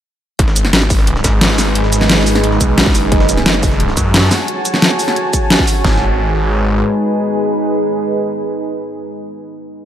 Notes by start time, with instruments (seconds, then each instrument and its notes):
0.39 detuned saw bass G#1, ambient pad G#3 D#4 G#4 B4, kick, closed hi-hat
0.48 snare
0.56 closed hi-hat, shaker
0.65 snare, closed hi-hat
0.73 detuned saw bass G#1, snare, closed hi-hat
0.82 snare
0.90 kick, closed hi-hat, open hi-hat, shaker
0.99 snare
1.07 closed hi-hat
1.16 snare
1.24 detuned saw bass G#1, kick, snare, closed hi-hat, shaker
1.41 snare, closed hi-hat
1.50 closed hi-hat
1.58 snare, closed hi-hat, open hi-hat, shaker
1.75 closed hi-hat
1.84 snare
1.92 closed hi-hat, shaker
2.01 snare
2.10 snare, closed hi-hat, open hi-hat
2.18 closed hi-hat
2.27 closed hi-hat, open hi-hat, shaker
2.35 snare
2.44 closed hi-hat
2.52 snare
2.61 detuned saw bass B1, kick, closed hi-hat, shaker
2.78 snare, closed hi-hat
2.86 kick, closed hi-hat
2.95 detuned saw bass F#1, snare, closed hi-hat, open hi-hat, shaker
3.12 detuned saw bass F#1, ambient pad F#4 C#5 G#5 A5, kick, closed hi-hat
3.20 snare
3.29 closed hi-hat, shaker
3.37 snare, closed hi-hat
3.46 detuned saw bass F#1, snare, closed hi-hat
3.54 snare
3.63 kick, closed hi-hat, open hi-hat, shaker
3.71 snare
3.80 closed hi-hat
3.89 snare
3.97 detuned saw bass F#2, kick, closed hi-hat, shaker
4.14 snare, closed hi-hat
4.23 closed hi-hat
4.31 snare, closed hi-hat, open hi-hat, shaker
4.48 closed hi-hat
4.65 closed hi-hat, shaker
4.74 snare
4.82 snare, closed hi-hat
4.91 snare
4.99 open hi-hat, shaker
5.08 snare
5.16 closed hi-hat
5.33 kick, closed hi-hat, shaker
5.50 snare, closed hi-hat
5.59 kick
5.67 open hi-hat, shaker
5.85 detuned saw bass G#1, ambient pad G#3 D#4 G#4 B4, kick, snare